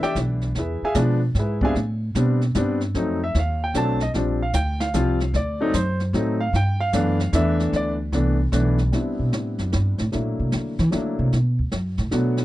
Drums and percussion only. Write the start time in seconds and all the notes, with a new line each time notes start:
0.02 snare
0.15 kick, snare, hi-hat pedal
0.41 snare
0.55 brush sweep, kick, snare
0.95 kick, snare, hi-hat pedal
1.35 kick, snare
1.61 kick
1.75 brush sweep, kick, snare
2.15 kick, snare, hi-hat pedal
2.41 snare
2.54 kick, snare, hi-hat pedal
2.80 snare
2.94 brush sweep, kick, snare
3.35 kick, snare
3.74 kick, snare, hi-hat pedal
4.00 snare
4.14 brush sweep, kick, snare
4.53 kick, snare, hi-hat pedal
4.80 snare
4.94 kick, snare, hi-hat pedal
5.20 snare
5.34 brush sweep, kick, snare
5.73 kick, snare, hi-hat pedal
6.00 snare
6.14 kick, snare
6.53 brush sweep, kick, snare
6.93 kick, snare, hi-hat pedal
7.20 snare
7.33 kick, snare, hi-hat pedal
7.59 snare
7.73 brush sweep, kick, snare
8.13 kick, snare
8.52 kick, snare, hi-hat pedal
8.78 snare
8.92 brush sweep, snare
9.33 snare
9.58 snare
9.72 snare
9.98 snare
10.12 brush sweep, snare
10.52 snare
10.78 snare
10.92 snare
11.32 brush sweep, snare
11.72 snare
11.97 snare
12.11 snare
12.37 snare